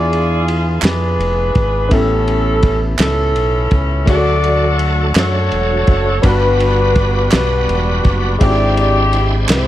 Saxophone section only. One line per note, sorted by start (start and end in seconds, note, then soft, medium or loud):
0.00 0.81 F4 medium
0.00 0.81 G#4 medium
0.00 0.45 D5 loud
0.85 1.89 D4 medium
0.85 1.89 G#4 medium
0.85 1.88 B4 medium
1.91 2.83 C#4 medium
1.91 2.83 E4 medium
1.91 2.83 A4 loud
3.00 4.05 C#4 medium
3.00 4.05 E4 medium
3.00 3.77 A4 medium
4.08 5.13 F#4 medium
4.08 5.13 A4 medium
4.08 4.76 D5 loud
5.18 6.21 F#4 medium
5.18 6.21 A4 medium
5.18 6.21 C#5 medium
6.26 7.30 D4 medium
6.26 7.29 F#4 medium
6.26 7.33 B4 loud
7.35 8.38 D4 medium
7.35 8.38 F#4 medium
7.35 8.11 B4 loud
8.43 9.35 G4 medium
8.43 9.10 D5 loud
9.52 9.67 E4 medium
9.52 9.67 G4 medium
9.52 9.67 C5 loud